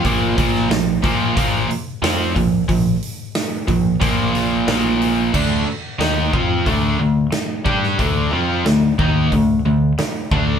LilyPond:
<<
  \new Staff \with { instrumentName = "Overdriven electric guitar" } { \clef bass \time 4/4 \key d \minor \tempo 4 = 91 <bes, f bes>8 <bes, f bes>8 <bes, f>8 <bes, f bes>8 <bes, f bes>8 r8 <f c' f'>8 <bes, f>8 | <bes, f>8 r4 <bes, f>8 <bes, f bes>4 <bes, f bes>4 | <d a d'>8 r8 <ees bes ees'>8 <f c' f'>8 <d a d'>8 <d a>8 r8 <g d' g'>8 | <d a d'>8 <f c' f'>8 <d a>8 <ees bes ees'>8 <d a>8 <d a>8 r8 <d a d'>8 | }
  \new Staff \with { instrumentName = "Picked electric bass" } { \clef bass \time 4/4 \key d \minor bes,,8 bes,,8 bes,,8 bes,,8 bes,,8 r8 f,8 bes,,8 | bes,,8 r4 bes,,8 bes,,4 bes,,4 | d,8 r8 ees,8 f,8 d,8 d,8 r8 g,8 | d,8 f,8 d,8 ees,8 d,8 d,8 r8 d,8 | }
  \new DrumStaff \with { instrumentName = "Drums" } \drummode { \time 4/4 <hho bd>8 <hho bd>16 sn16 <hho sn>8 <hho bd>8 <hho bd>8 hho8 <hho sn>8 <hho bd>8 | <hho bd>8 hho8 <hho sn>8 <hho bd>8 <hho bd>8 hho8 <hho sn>8 hho8 | <cymc bd>4 <hho sn>8 bd8 <hho bd>4 <hho sn>8 bd16 sn16 | <hho bd>4 <hho sn>8 bd8 <hho bd>4 <hho sn>8 bd8 | }
>>